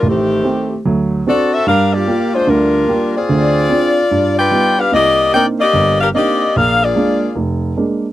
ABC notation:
X:1
M:4/4
L:1/8
Q:"Swing" 1/4=148
K:Gphr
V:1 name="Saxophone section"
[E,=A,CG]4 z2 [C^F=Ad] [CFA_f] | [DGBf] [B,FGd]2 [A,DFc] [G,DFB]3 [CFAd]- | [CFAd]4- [CFAd] [F=Bdg]2 [DGBf] | [B,Gde]2 [EBdg] [B,Gde]2 [DGBf] [B,Gde]2 |
[DABf] [B,FAd]3 z4 |]
V:2 name="Grand piano"
[=A,,,=A,,]2 [=A,CG] z [D,,^F,]2 [CD^F] z | [G,,G,]2 [B,FG] z [D,,D,]2 [B,FG] z | [D,,D,]2 [CDF] z G,,2 [G,=B,EF] z | [C,,C,]2 [B,CDE] z G,,,2 [B,CDE] z |
B,,,2 [A,B,D] z F,,,2 [A,B,D] z |]